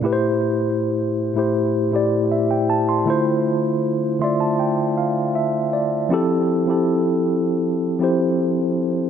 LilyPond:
\new Staff \with { instrumentName = "Tine electric piano" } { \time 4/4 \key f \major \tempo 4 = 79 << { r2. e''16 g''16 a''16 c'''16~ | c'''16 r4 r16 c'''16 a''16 g''8 f''8 e''8 d''8 | r1 | } \\ { <a, a e' g' b' c''>4~ <a, a e' g' b' c''>16 r8 <a, a e' g' c''>8 r16 <a, a e' g' d''>4 r8 | <d a e' f' c''>4 r8 <d a f' d'' e''>4. r4 | <f c' e' g' a'>8 r16 <f c' e' g' a'>4~ <f c' e' g' a'>16 r8 <f c' e' g' c''>4 r8 | } >> }